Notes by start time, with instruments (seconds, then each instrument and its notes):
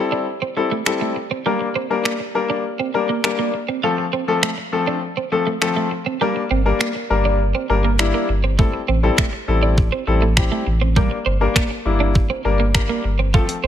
Already playing: grand piano G3 C4 E4 A4
0.12 clean electric guitar D4
0.42 clean electric guitar C4
0.57 grand piano G3 C4 E4 A4, muted clean electric guitar stroke
0.72 clean electric guitar A3
0.86 grand piano G3 C4 E4 A4, finger snap
1.01 clean electric guitar A3
1.16 muted clean electric guitar stroke
1.31 clean electric guitar C4
1.46 grand piano G3 A#3 D4 A#4, clean electric guitar G3
1.61 muted clean electric guitar stroke
1.76 clean electric guitar C4
1.90 grand piano G3 A#3 D4 A#4
2.05 clean electric guitar A#3, finger snap
2.20 muted clean electric guitar stroke
2.35 grand piano G3 A#3 D4 A#4
2.50 clean electric guitar D4
2.80 clean electric guitar C4
2.94 grand piano G3 A#3 D4 A#4, muted clean electric guitar stroke
3.09 clean electric guitar A#3
3.24 grand piano G3 A#3 D4 A#4, finger snap
3.39 clean electric guitar A#3
3.54 muted clean electric guitar stroke
3.69 clean electric guitar C4
3.83 grand piano F3 A3 C4 A4, clean electric guitar F4
3.98 muted clean electric guitar stroke
4.13 clean electric guitar C4
4.28 grand piano F3 A3 C4 A4
4.43 clean electric guitar A3, finger snap
4.58 muted clean electric guitar stroke
4.72 grand piano F3 A3 C4 A4
4.87 clean electric guitar D4
5.17 clean electric guitar C4
5.32 grand piano F3 A3 C4 A4, muted clean electric guitar stroke
5.47 clean electric guitar A3
5.61 grand piano F3 A3 C4 A4, finger snap
5.77 clean electric guitar A3
5.91 muted clean electric guitar stroke
6.06 clean electric guitar C4
6.21 grand piano G3 A#3 D4 A#4, clean electric guitar G3
6.36 muted clean electric guitar stroke
6.51 sub bass G1, clean electric guitar C4
6.65 grand piano G3 A#3 D4 A#4
6.81 clean electric guitar A#3, finger snap
6.95 muted clean electric guitar stroke
7.10 sub bass G1, grand piano G3 A#3 D4 A#4
7.25 clean electric guitar D4
7.55 clean electric guitar C4
7.69 sub bass G1, grand piano G3 A#3 D4 A#4, muted clean electric guitar stroke
7.85 clean electric guitar A#3
7.99 grand piano G3 A#3 D4 E4, finger snap
8.14 clean electric guitar A#3
8.29 sub bass G1, muted clean electric guitar stroke
8.44 clean electric guitar C4
8.58 grand piano G3 C4 E4 A4, clean electric guitar A3, kick
8.74 muted clean electric guitar stroke
8.88 sub bass A1, clean electric guitar C4
9.03 grand piano G3 C4 E4 A4
9.18 clean electric guitar A3, finger snap, kick
9.33 muted clean electric guitar stroke
9.48 sub bass A1, grand piano G3 C4 E4 A4
9.63 clean electric guitar D4
9.78 kick
9.92 clean electric guitar C4
10.07 sub bass A1, grand piano G3 C4 E4 A4, muted clean electric guitar stroke
10.22 clean electric guitar A3
10.37 grand piano G3 C4 E4 G4, finger snap, kick
10.52 clean electric guitar A3
10.67 sub bass A1, muted clean electric guitar stroke
10.82 clean electric guitar C4
10.96 grand piano G3 A#3 D4 A#4, clean electric guitar G3, kick
11.11 muted clean electric guitar stroke
11.26 sub bass G1, clean electric guitar C4
11.41 grand piano G3 A#3 D4 A#4
11.56 clean electric guitar A#3, finger snap, kick
11.71 muted clean electric guitar stroke
11.85 sub bass G1, grand piano G3 A#3 D4 E4
12.00 clean electric guitar D4
12.15 kick
12.30 clean electric guitar C4
12.45 sub bass G1, grand piano G3 A#3 D4 A#4, muted clean electric guitar stroke
12.60 clean electric guitar A#3
12.74 grand piano G3 A#3 D4 A#4, finger snap, kick
12.89 clean electric guitar A#3
13.04 sub bass G1, muted clean electric guitar stroke
13.19 clean electric guitar C4
13.34 grand piano F3 A3 C4 A4, clean electric guitar F4, kick
13.49 muted clean electric guitar stroke, closed hi-hat
13.64 sub bass F1, clean electric guitar C4